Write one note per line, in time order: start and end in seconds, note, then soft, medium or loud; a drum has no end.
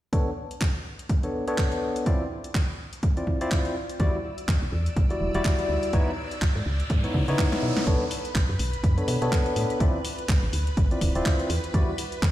0.13 0.30 B3 medium
0.13 0.30 D4 medium
0.13 0.30 A4 medium
0.13 0.30 C#5 medium
0.13 kick loud
0.13 closed hi-hat medium
0.51 closed hi-hat soft
0.61 kick loud
0.61 clap loud
0.61 closed hi-hat medium
0.99 closed hi-hat soft
1.09 kick loud
1.09 closed hi-hat medium
1.23 1.44 B3 medium
1.23 1.44 D4 medium
1.23 1.44 A4 medium
1.23 1.44 C#5 medium
1.23 closed hi-hat soft
1.47 2.04 B3 medium
1.47 2.04 D4 medium
1.47 2.04 A4 medium
1.47 2.04 C#5 medium
1.47 closed hi-hat soft
1.58 kick loud
1.58 clap loud
1.58 closed hi-hat medium
1.72 closed hi-hat soft
1.96 closed hi-hat soft
2.06 2.23 C4 medium
2.06 2.23 E4 medium
2.06 2.23 F4 medium
2.06 2.23 D5 medium
2.06 kick loud
2.06 closed hi-hat medium
2.44 closed hi-hat soft
2.54 kick loud
2.54 clap loud
2.54 closed hi-hat medium
2.93 closed hi-hat soft
3.03 kick loud
3.03 closed hi-hat medium
3.17 3.38 C4 medium
3.17 3.38 E4 medium
3.17 3.38 F4 medium
3.17 3.38 D5 medium
3.17 closed hi-hat soft
3.27 kick medium
3.41 3.74 C4 medium
3.41 3.74 E4 medium
3.41 3.74 F4 medium
3.41 3.74 D5 loud
3.41 closed hi-hat soft
3.51 kick loud
3.51 clap loud
3.51 closed hi-hat medium
3.65 closed hi-hat soft
3.89 closed hi-hat soft
4.00 4.09 E2 medium
4.00 4.17 G3 medium
4.00 4.17 E4 medium
4.00 4.17 F#4 medium
4.00 7.88 D5 medium
4.00 4.17 D5 loud
4.00 7.88 E6 medium
4.00 kick loud
4.00 closed hi-hat medium
4.00 riser medium
4.38 closed hi-hat soft
4.48 4.57 E2 medium
4.48 kick loud
4.48 clap loud
4.48 closed hi-hat medium
4.62 4.69 B1 medium
4.72 4.89 E2 medium
4.86 closed hi-hat soft
4.96 5.13 B1 medium
4.96 kick loud
4.96 closed hi-hat medium
5.10 5.31 G3 medium
5.10 5.31 E4 medium
5.10 5.31 F#4 medium
5.10 5.31 D5 medium
5.10 closed hi-hat soft
5.21 5.30 E1 medium
5.34 5.41 E1 medium
5.34 5.91 G3 medium
5.34 5.91 E4 medium
5.34 5.91 F#4 medium
5.34 5.91 D5 loud
5.34 closed hi-hat soft
5.45 kick loud
5.45 clap loud
5.45 closed hi-hat medium
5.59 closed hi-hat soft
5.69 5.78 D2 medium
5.83 closed hi-hat soft
5.93 6.02 C#2 medium
5.93 6.10 B3 medium
5.93 6.10 D#4 medium
5.93 6.10 E4 medium
5.93 6.10 C#5 medium
5.93 kick loud
5.93 closed hi-hat medium
6.31 closed hi-hat soft
6.42 6.51 C#2 medium
6.42 kick loud
6.42 clap loud
6.42 closed hi-hat medium
6.55 6.62 G#2 medium
6.66 6.83 C#2 medium
6.80 closed hi-hat soft
6.90 7.07 G#2 medium
6.90 kick loud
6.90 closed hi-hat medium
7.04 7.25 B3 medium
7.04 7.25 D#4 medium
7.04 7.25 E4 medium
7.04 7.25 C#5 medium
7.04 closed hi-hat soft
7.14 7.23 C#3 medium
7.14 kick medium
7.28 7.35 C#3 loud
7.28 7.84 B3 medium
7.28 7.84 D#4 medium
7.28 7.84 E4 medium
7.28 7.85 C#5 loud
7.28 closed hi-hat soft
7.38 kick loud
7.38 clap loud
7.38 closed hi-hat medium
7.52 snare medium
7.52 closed hi-hat soft
7.63 7.72 B2 medium
7.77 snare medium
7.77 closed hi-hat soft
7.87 7.96 B1 medium
7.87 8.04 B3 medium
7.87 8.04 D4 medium
7.87 8.04 A4 medium
7.87 12.32 B4 medium
7.87 8.04 C#5 loud
7.87 12.32 B5 medium
7.87 kick loud
7.87 closed hi-hat medium
8.11 open hi-hat loud
8.25 closed hi-hat medium
8.35 8.44 B1 medium
8.35 kick loud
8.35 clap loud
8.35 closed hi-hat medium
8.49 8.56 F#2 medium
8.59 8.76 B1 medium
8.59 open hi-hat loud
8.73 closed hi-hat soft
8.84 9.01 F#2 medium
8.84 kick loud
8.84 closed hi-hat medium
8.98 9.18 B3 medium
8.98 9.18 D4 medium
8.98 9.18 A4 medium
8.98 9.19 C#5 medium
8.98 closed hi-hat soft
9.08 9.17 B2 loud
9.08 open hi-hat loud
9.22 9.28 B2 loud
9.22 9.78 B3 medium
9.22 9.78 D4 medium
9.22 9.78 A4 medium
9.22 9.78 C#5 loud
9.22 closed hi-hat medium
9.32 kick loud
9.32 clap loud
9.32 closed hi-hat medium
9.46 closed hi-hat soft
9.56 9.65 A2 medium
9.56 open hi-hat loud
9.70 closed hi-hat medium
9.80 9.89 D2 loud
9.80 9.97 C4 medium
9.80 9.97 E4 medium
9.80 9.97 F4 medium
9.80 9.97 D5 loud
9.80 kick loud
9.80 closed hi-hat medium
10.05 open hi-hat loud
10.19 closed hi-hat soft
10.29 10.38 D2 medium
10.29 kick loud
10.29 clap loud
10.29 closed hi-hat medium
10.43 10.49 A1 medium
10.53 10.70 D2 medium
10.53 open hi-hat loud
10.67 closed hi-hat medium
10.77 10.94 A1 medium
10.77 kick loud
10.77 closed hi-hat medium
10.91 11.12 C4 medium
10.91 11.12 E4 medium
10.91 11.12 F4 medium
10.91 11.12 D5 medium
10.91 closed hi-hat soft
11.01 11.10 D1 medium
11.01 kick medium
11.01 open hi-hat loud
11.15 11.22 D1 loud
11.15 11.49 C4 medium
11.15 11.49 E4 medium
11.15 11.49 F4 medium
11.15 11.49 D5 loud
11.15 closed hi-hat medium
11.26 kick loud
11.26 clap loud
11.26 closed hi-hat medium
11.39 closed hi-hat soft
11.50 11.59 E2 medium
11.50 open hi-hat loud
11.64 closed hi-hat soft
11.74 11.83 E2 loud
11.74 11.91 G3 medium
11.74 11.91 E4 medium
11.74 11.91 F#4 medium
11.74 11.91 D5 loud
11.74 kick loud
11.74 closed hi-hat medium
11.98 open hi-hat loud
12.12 closed hi-hat soft
12.22 12.31 E2 medium
12.22 kick loud
12.22 clap loud
12.22 closed hi-hat medium